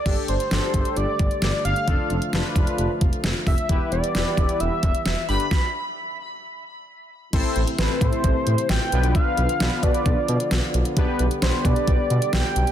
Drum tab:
CC |x---------------|----------------|----------------|----------------|
HH |x-xxx-xxx-xxx-xx|x-xxx-xxx-xxx-ox|x-xxx-xxx-xxx-ox|----------------|
SD |----o-------o---|----o-------o---|----o-------o---|o---------------|
BD |o-----o---o-----|o-----o---o---o-|o-----o---o-----|o---------------|

CC |x---------------|----------------|----------------|
HH |x-xxx-xxx-xxx-xx|x-xxx-xxx-xxx-xx|x-xxx-xxx-xxx-xx|
SD |----o-------o---|----o-------o---|----o-------o---|
BD |o-----o-o-------|o-----o-o-------|o-----o-o-------|